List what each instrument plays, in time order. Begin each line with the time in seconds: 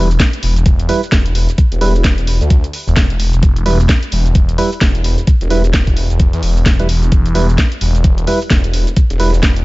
Already playing: detuned saw bass E1
0.11 shaker
0.20 kick, snare, closed hi-hat, shaker
0.33 closed hi-hat, shaker
0.43 detuned saw bass E1, open hi-hat
0.56 closed hi-hat, shaker
0.66 kick, closed hi-hat, shaker
0.80 closed hi-hat, shaker
0.89 synth stab G3 E4 B4, open hi-hat
1.03 shaker
1.12 detuned saw bass E1, kick, snare, closed hi-hat, shaker
1.26 closed hi-hat, shaker
1.35 open hi-hat
1.49 closed hi-hat, shaker
1.58 kick, closed hi-hat, shaker
1.72 detuned saw bass E1, closed hi-hat, shaker
1.81 synth stab G3 E4 B4, open hi-hat
1.96 shaker
2.04 kick, snare, closed hi-hat, shaker
2.18 detuned saw bass E1, closed hi-hat, shaker
2.27 open hi-hat
2.41 detuned saw bass D2, closed hi-hat, shaker
2.50 kick, closed hi-hat, shaker
2.64 closed hi-hat, shaker
2.73 open hi-hat
2.87 detuned saw bass E1, shaker
2.96 kick, snare, closed hi-hat, shaker
3.10 detuned saw bass E1, closed hi-hat, shaker
3.20 open hi-hat
3.33 detuned saw bass E1, closed hi-hat, shaker
3.43 detuned saw bass E1, kick, closed hi-hat, shaker
3.56 closed hi-hat, shaker
3.66 detuned saw bass E1, synth stab G3 E4 B4, open hi-hat
3.80 shaker
3.89 kick, snare, closed hi-hat, shaker
4.03 closed hi-hat, shaker
4.12 detuned saw bass E1, open hi-hat
4.26 closed hi-hat, shaker
4.35 kick, closed hi-hat, shaker
4.49 closed hi-hat, shaker
4.58 synth stab G3 E4 B4, open hi-hat
4.72 shaker
4.81 detuned saw bass E1, kick, snare, closed hi-hat, shaker
4.95 closed hi-hat, shaker
5.04 open hi-hat
5.19 shaker
5.27 kick, closed hi-hat, shaker
5.41 detuned saw bass E1, closed hi-hat, shaker
5.50 synth stab G3 E4 B4, open hi-hat
5.64 closed hi-hat, shaker
5.73 kick, snare, closed hi-hat, shaker
5.87 detuned saw bass E1, kick, closed hi-hat, shaker
5.97 open hi-hat
6.10 detuned saw bass E1, closed hi-hat, shaker
6.20 kick, closed hi-hat, shaker
6.33 detuned saw bass E2, closed hi-hat, shaker
6.43 detuned saw bass E1, open hi-hat
6.57 shaker
6.66 kick, snare, closed hi-hat, shaker
6.79 synth stab G3 E4 B4, closed hi-hat, shaker
6.89 detuned saw bass E1, open hi-hat
7.03 closed hi-hat, shaker
7.12 detuned saw bass E1, kick, closed hi-hat, shaker
7.26 closed hi-hat, shaker
7.35 detuned saw bass E1, synth stab G3 E4 B4, open hi-hat
7.49 shaker
7.58 kick, snare, closed hi-hat, shaker
7.72 closed hi-hat, shaker
7.81 detuned saw bass E1, open hi-hat
7.95 closed hi-hat, shaker
8.04 kick, closed hi-hat, shaker
8.18 closed hi-hat, shaker
8.27 synth stab G3 E4 B4, open hi-hat
8.42 shaker
8.50 detuned saw bass E1, kick, snare, closed hi-hat, shaker
8.64 closed hi-hat, shaker
8.73 open hi-hat
8.87 closed hi-hat, shaker
8.97 kick, closed hi-hat, shaker
9.10 detuned saw bass E1, closed hi-hat, shaker
9.20 synth stab G3 E4 B4, open hi-hat
9.34 shaker
9.43 kick, snare, closed hi-hat, shaker
9.56 detuned saw bass E1, closed hi-hat, shaker